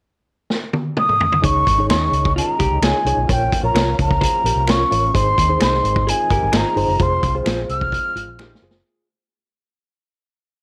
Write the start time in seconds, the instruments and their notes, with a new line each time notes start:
0.50 snare
0.73 high tom
0.97 flute D#6, mid tom
1.09 mid tom
1.21 floor tom
1.32 floor tom
1.41 fingered electric bass C#2, tonewheel organ D#3 G#3 C#4 D#4, reed electric piano D#4 G#4 C#5, flute C#6, kick, closed hi-hat
1.67 fingered electric bass G#1, kick, closed hi-hat
1.78 reed electric piano D#4 G#4 C#5
1.89 fingered electric bass D#2, clean electric guitar D#4 G#4 C#5, flute C#6, finger snap, snare, closed hi-hat
2.12 fingered electric bass C#2, closed hi-hat
2.25 kick
2.36 hollow-body jazz guitar C#4 F4, flute A#5, closed hi-hat
2.59 fingered electric bass C2, hollow-body jazz guitar D#4 G4, kick, closed hi-hat
2.70 fingered electric bass C#2
2.82 fingered electric bass C#2, clean electric guitar D#4 G#4 C#5, hollow-body jazz guitar F4 G#4, flute G#5, finger snap, snare, closed hi-hat
3.05 fingered electric bass C2, reed electric piano D#4 G#4 C#5, closed hi-hat
3.17 fingered electric bass B1
3.27 fingered electric bass A#1, tonewheel organ F3 A#3 F4, reed electric piano F4 A#4 C#5, flute G5, kick, closed hi-hat
3.52 kick, closed hi-hat
3.63 fingered electric bass A#1, reed electric piano F4 A#4 C#5, flute A#5
3.74 fingered electric bass C2, clean electric guitar F4 A#4 C#5, finger snap, snare, closed hi-hat
3.99 fingered electric bass C#2, flute A#5, kick, closed hi-hat
4.11 kick
4.21 hollow-body jazz guitar G#4 C5, kick, closed hi-hat
4.44 fingered electric bass A#1, hollow-body jazz guitar G4 A#4, closed hi-hat
4.56 fingered electric bass C2
4.67 hollow-body jazz guitar C#4 F4, clean electric guitar F4 A#4 C#5, flute C#6, finger snap, snare, closed hi-hat
4.91 fingered electric bass A1, reed electric piano F4 A#4 C#5, closed hi-hat
5.14 fingered electric bass G#1, tonewheel organ D#3 G#3 C4 D#4, reed electric piano D#4 G#4 C5, flute C6, kick, closed hi-hat
5.38 fingered electric bass D#2, kick, closed hi-hat
5.49 reed electric piano D#4 G#4 C5
5.60 fingered electric bass C2, clean electric guitar D#4 G#4 C5, flute C6, finger snap, snare, closed hi-hat
5.74 snare
5.84 fingered electric bass G#1, closed hi-hat
5.96 kick
6.07 hollow-body jazz guitar F4 G#4, flute G#5, closed hi-hat
6.30 fingered electric bass G1, hollow-body jazz guitar G4 A#4, kick, closed hi-hat
6.42 fingered electric bass G#1
6.52 fingered electric bass G#1, clean electric guitar D#4 G#4 C5, hollow-body jazz guitar F4 G#4, finger snap, snare, closed hi-hat
6.57 flute A#5
6.76 fingered electric bass G1, reed electric piano D#4 G#4 C5, open hi-hat
6.88 fingered electric bass F#1
6.99 fingered electric bass F1, tonewheel organ F3 C4 F4, reed electric piano F4 G#4 C5, flute C6, kick, closed hi-hat
7.23 fingered electric bass C2, kick, closed hi-hat
7.35 reed electric piano F4 G#4 C5
7.46 fingered electric bass A#1, clean electric guitar F4 G#4 C5, finger snap, snare, closed hi-hat
7.69 fingered electric bass C2, flute F6, closed hi-hat
7.81 kick
7.92 kick, closed hi-hat
8.15 fingered electric bass G#1, hollow-body jazz guitar F4, closed hi-hat
8.27 fingered electric bass A#1
8.39 hollow-body jazz guitar D#4 G4, clean electric guitar F4 G#4 C5, finger snap, snare
8.55 snare
8.62 fingered electric bass F#1, reed electric piano F4 G#4 C5, hollow-body jazz guitar F4 G#4
8.71 snare